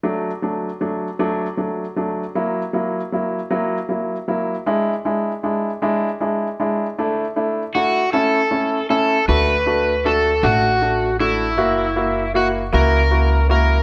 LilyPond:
<<
  \new Staff \with { instrumentName = "Electric slide guitar" } { \time 6/8 \key d \major \tempo 4. = 52 r2. | r2. | r2. | r4 fis'8 a'4 a'8 |
b'4 a'8 fis'4 e'8~ | e'4 fis'8 ais'4 ais'8 | }
  \new Staff \with { instrumentName = "Grand piano" } { \time 6/8 \key d \major <fis a d'>8 <fis a d'>8 <fis a d'>8 <fis a d'>8 <fis a d'>8 <fis a d'>8 | <fis ais e'>8 <fis ais e'>8 <fis ais e'>8 <fis ais e'>8 <fis ais e'>8 <fis ais e'>8 | <gis d' e'>8 <gis d' e'>8 <gis d' e'>8 <gis d' e'>8 <gis d' e'>8 <gis d' e'>8 | <a d' e'>8 <a d' e'>8 <a d' e'>8 <a cis' e'>8 <a cis' e'>8 <a cis' e'>8 |
<a d' fis'>8 <a d' fis'>8 <a d' fis'>8 <a d' fis'>8 <a d' fis'>8 <a d' fis'>8 | <ais e' fis'>8 <ais e' fis'>8 <ais e' fis'>8 <ais e' fis'>8 <ais e' fis'>8 <ais e' fis'>8 | }
  \new Staff \with { instrumentName = "Upright bass" } { \clef bass \time 6/8 \key d \major r2. | r2. | r2. | r2. |
d,4. a,,4. | fis,,4. cis,4. | }
>>